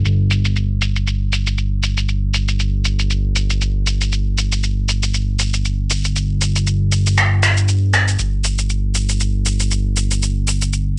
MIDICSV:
0, 0, Header, 1, 3, 480
1, 0, Start_track
1, 0, Tempo, 508475
1, 52, Time_signature, 4, 2, 24, 8
1, 10372, End_track
2, 0, Start_track
2, 0, Title_t, "Analog synth bass"
2, 0, Program_c, 0, 38
2, 50, Note_on_c, 0, 31, 80
2, 7710, Note_off_c, 0, 31, 0
2, 7731, Note_on_c, 0, 31, 83
2, 10372, Note_off_c, 0, 31, 0
2, 10372, End_track
3, 0, Start_track
3, 0, Title_t, "Drums"
3, 49, Note_on_c, 9, 82, 35
3, 144, Note_off_c, 9, 82, 0
3, 290, Note_on_c, 9, 82, 86
3, 384, Note_off_c, 9, 82, 0
3, 424, Note_on_c, 9, 82, 48
3, 518, Note_off_c, 9, 82, 0
3, 529, Note_on_c, 9, 82, 35
3, 624, Note_off_c, 9, 82, 0
3, 770, Note_on_c, 9, 82, 83
3, 864, Note_off_c, 9, 82, 0
3, 907, Note_on_c, 9, 82, 47
3, 1001, Note_off_c, 9, 82, 0
3, 1012, Note_on_c, 9, 82, 36
3, 1106, Note_off_c, 9, 82, 0
3, 1252, Note_on_c, 9, 82, 88
3, 1347, Note_off_c, 9, 82, 0
3, 1386, Note_on_c, 9, 82, 49
3, 1480, Note_off_c, 9, 82, 0
3, 1491, Note_on_c, 9, 82, 35
3, 1586, Note_off_c, 9, 82, 0
3, 1730, Note_on_c, 9, 82, 83
3, 1824, Note_off_c, 9, 82, 0
3, 1864, Note_on_c, 9, 82, 49
3, 1958, Note_off_c, 9, 82, 0
3, 1971, Note_on_c, 9, 82, 34
3, 2065, Note_off_c, 9, 82, 0
3, 2210, Note_on_c, 9, 82, 83
3, 2304, Note_off_c, 9, 82, 0
3, 2345, Note_on_c, 9, 82, 47
3, 2439, Note_off_c, 9, 82, 0
3, 2451, Note_on_c, 9, 82, 34
3, 2546, Note_off_c, 9, 82, 0
3, 2690, Note_on_c, 9, 82, 82
3, 2785, Note_off_c, 9, 82, 0
3, 2826, Note_on_c, 9, 82, 46
3, 2920, Note_off_c, 9, 82, 0
3, 2931, Note_on_c, 9, 82, 38
3, 3025, Note_off_c, 9, 82, 0
3, 3171, Note_on_c, 9, 82, 86
3, 3265, Note_off_c, 9, 82, 0
3, 3305, Note_on_c, 9, 82, 48
3, 3400, Note_off_c, 9, 82, 0
3, 3412, Note_on_c, 9, 82, 34
3, 3506, Note_off_c, 9, 82, 0
3, 3651, Note_on_c, 9, 82, 80
3, 3745, Note_off_c, 9, 82, 0
3, 3786, Note_on_c, 9, 82, 46
3, 3881, Note_off_c, 9, 82, 0
3, 3892, Note_on_c, 9, 82, 34
3, 3987, Note_off_c, 9, 82, 0
3, 4133, Note_on_c, 9, 82, 82
3, 4228, Note_off_c, 9, 82, 0
3, 4266, Note_on_c, 9, 82, 46
3, 4361, Note_off_c, 9, 82, 0
3, 4373, Note_on_c, 9, 82, 33
3, 4467, Note_off_c, 9, 82, 0
3, 4612, Note_on_c, 9, 82, 80
3, 4707, Note_off_c, 9, 82, 0
3, 4746, Note_on_c, 9, 82, 47
3, 4841, Note_off_c, 9, 82, 0
3, 4851, Note_on_c, 9, 82, 36
3, 4946, Note_off_c, 9, 82, 0
3, 5089, Note_on_c, 9, 82, 82
3, 5183, Note_off_c, 9, 82, 0
3, 5224, Note_on_c, 9, 82, 46
3, 5319, Note_off_c, 9, 82, 0
3, 5333, Note_on_c, 9, 82, 33
3, 5427, Note_off_c, 9, 82, 0
3, 5571, Note_on_c, 9, 82, 81
3, 5665, Note_off_c, 9, 82, 0
3, 5706, Note_on_c, 9, 82, 45
3, 5801, Note_off_c, 9, 82, 0
3, 5813, Note_on_c, 9, 82, 34
3, 5908, Note_off_c, 9, 82, 0
3, 6054, Note_on_c, 9, 82, 84
3, 6148, Note_off_c, 9, 82, 0
3, 6190, Note_on_c, 9, 82, 48
3, 6284, Note_off_c, 9, 82, 0
3, 6294, Note_on_c, 9, 82, 34
3, 6388, Note_off_c, 9, 82, 0
3, 6532, Note_on_c, 9, 82, 80
3, 6626, Note_off_c, 9, 82, 0
3, 6670, Note_on_c, 9, 82, 45
3, 6765, Note_off_c, 9, 82, 0
3, 6775, Note_on_c, 9, 26, 77
3, 6776, Note_on_c, 9, 82, 37
3, 6870, Note_off_c, 9, 26, 0
3, 6870, Note_off_c, 9, 82, 0
3, 7015, Note_on_c, 9, 26, 82
3, 7015, Note_on_c, 9, 82, 86
3, 7109, Note_off_c, 9, 26, 0
3, 7109, Note_off_c, 9, 82, 0
3, 7149, Note_on_c, 9, 82, 48
3, 7244, Note_off_c, 9, 82, 0
3, 7254, Note_on_c, 9, 82, 33
3, 7348, Note_off_c, 9, 82, 0
3, 7492, Note_on_c, 9, 26, 77
3, 7493, Note_on_c, 9, 82, 81
3, 7587, Note_off_c, 9, 26, 0
3, 7587, Note_off_c, 9, 82, 0
3, 7629, Note_on_c, 9, 82, 46
3, 7723, Note_off_c, 9, 82, 0
3, 7731, Note_on_c, 9, 82, 37
3, 7826, Note_off_c, 9, 82, 0
3, 7970, Note_on_c, 9, 82, 88
3, 8064, Note_off_c, 9, 82, 0
3, 8105, Note_on_c, 9, 82, 48
3, 8199, Note_off_c, 9, 82, 0
3, 8211, Note_on_c, 9, 82, 34
3, 8305, Note_off_c, 9, 82, 0
3, 8448, Note_on_c, 9, 82, 85
3, 8543, Note_off_c, 9, 82, 0
3, 8584, Note_on_c, 9, 82, 46
3, 8678, Note_off_c, 9, 82, 0
3, 8689, Note_on_c, 9, 82, 38
3, 8784, Note_off_c, 9, 82, 0
3, 8929, Note_on_c, 9, 82, 86
3, 9023, Note_off_c, 9, 82, 0
3, 9062, Note_on_c, 9, 82, 49
3, 9156, Note_off_c, 9, 82, 0
3, 9167, Note_on_c, 9, 82, 34
3, 9262, Note_off_c, 9, 82, 0
3, 9408, Note_on_c, 9, 82, 88
3, 9502, Note_off_c, 9, 82, 0
3, 9544, Note_on_c, 9, 82, 48
3, 9638, Note_off_c, 9, 82, 0
3, 9652, Note_on_c, 9, 82, 37
3, 9746, Note_off_c, 9, 82, 0
3, 9888, Note_on_c, 9, 82, 88
3, 9983, Note_off_c, 9, 82, 0
3, 10023, Note_on_c, 9, 82, 49
3, 10117, Note_off_c, 9, 82, 0
3, 10130, Note_on_c, 9, 82, 36
3, 10224, Note_off_c, 9, 82, 0
3, 10372, End_track
0, 0, End_of_file